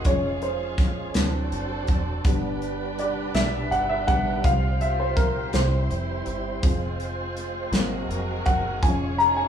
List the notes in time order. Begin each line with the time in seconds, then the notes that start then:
Already playing: G#4
0.04 F1 F3 G#3 C#4 F4 G#4 C#5 F5, kick, closed hi-hat
0.42 C5, closed hi-hat
0.78 kick, snare, closed hi-hat
1.14 D2 E3 F#3 C4 D4 F#4 A4 C5 D5, snare, closed hi-hat
1.23 F#3
1.52 F#1, closed hi-hat
1.87 E1, kick, closed hi-hat
2.25 G1 D3 G3 B3 D4 G4 B4 D5, kick, closed hi-hat
2.62 closed hi-hat
2.99 D5, closed hi-hat
3.34 B1 E5, snare, closed hi-hat
3.71 G1 F#5, closed hi-hat
3.89 E5
4.07 A1 D3 G3 B3 F#5, kick, closed hi-hat
4.43 C2 F3 G3 C4 E4 F4 C5 F5, kick, closed hi-hat
4.51 F4
4.81 E5, closed hi-hat
5.00 C5
5.16 A#4, kick, closed hi-hat
5.53 C2 E3 G3 C4 E4 C5, snare, closed hi-hat
5.90 F1, closed hi-hat
6.26 G1, closed hi-hat
6.63 F1 F3 G#3 C4 F4 G#4 C5, kick, closed hi-hat
7.00 closed hi-hat
7.37 closed hi-hat
7.72 G#1 F#3 G#3 A#3 C4 F#4 A#4, snare, closed hi-hat
8.08 F1, closed hi-hat
8.46 F#1 F#5, kick, closed hi-hat
8.82 F1 F3 G#3 C#4 F4 C#5 G#5, kick, closed hi-hat
9.18 A#5, closed hi-hat
9.37 G#5